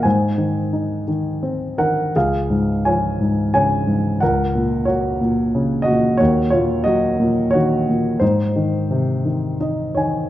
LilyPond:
<<
  \new Staff \with { instrumentName = "Grand piano" } { \time 3/4 \key aes \mixolydian \tempo 4 = 88 <c'' aes''>4. r4 <bes' ges''>8 | <aes' f''>4 <des'' aes''>4 <des'' aes''>4 | <bes' ges''>4 <ges' des''>4. <ges' ees''>8 | <ges' des''>8 <f' des''>8 <ges' ees''>4 <ges' des''>4 |
<ees' c''>2 ees''8 <des'' aes''>8 | }
  \new Staff \with { instrumentName = "Grand piano" } { \clef bass \time 3/4 \key aes \mixolydian aes,8 ees8 ees'8 ees8 c'8 ees8 | des,8 aes,8 f8 aes,8 des8 aes,8 | des,8 bes,8 bes8 bes,8 des8 bes,8 | ees,8 bes,8 ges8 bes,8 ees8 bes,8 |
aes,8 ees8 c8 ees8 ees'8 ees8 | }
>>